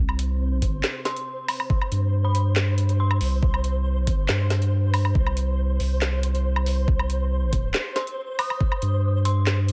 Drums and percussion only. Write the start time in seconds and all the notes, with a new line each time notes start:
0.09 low woodblock
0.19 closed hi-hat
0.62 kick, closed hi-hat
0.84 snare, clap
1.05 snare, closed hi-hat
1.17 closed hi-hat
1.48 open hi-hat, low woodblock
1.60 low woodblock
1.70 kick
1.82 low woodblock
1.92 closed hi-hat
2.35 closed hi-hat
2.56 snare, clap
2.78 closed hi-hat
2.89 closed hi-hat
3.11 low woodblock
3.21 open hi-hat
3.43 kick
3.54 low woodblock
3.64 closed hi-hat
4.07 kick, closed hi-hat
4.29 snare, clap
4.50 snare, closed hi-hat
4.62 closed hi-hat
4.94 open hi-hat, low woodblock
5.05 low woodblock
5.15 kick
5.27 low woodblock
5.37 closed hi-hat
5.80 open hi-hat
6.02 snare, clap
6.23 closed hi-hat
6.35 closed hi-hat
6.56 low woodblock
6.66 open hi-hat
6.88 kick
6.99 low woodblock
7.10 closed hi-hat
7.53 kick, closed hi-hat
7.74 snare, clap
7.96 snare, closed hi-hat
8.07 closed hi-hat
8.39 open hi-hat, low woodblock
8.50 low woodblock
8.61 kick
8.72 low woodblock
8.82 closed hi-hat
9.25 closed hi-hat
9.47 snare, clap
9.69 closed hi-hat